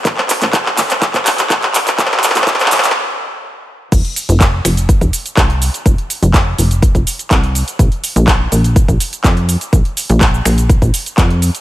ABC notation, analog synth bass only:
X:1
M:4/4
L:1/16
Q:1/4=124
K:Bbdor
V:1 name="Analog synth bass" clef=bass
B,,, z2 B,,,3 B,,,3 B,,, z2 B,,,3 z | B,,, z2 B,,,3 B,,,2 z8 | F,,, z2 F,,,3 F,,,3 F,,, z2 C,,3 z | F,,, z2 F,,,3 F,,,3 F,,, z2 C,,3 z |
B,,, z2 B,,,3 B,,,3 B,,, z2 F,,3 z | B,,, z2 B,,,3 B,,,3 B,,, z2 F,,3 z |]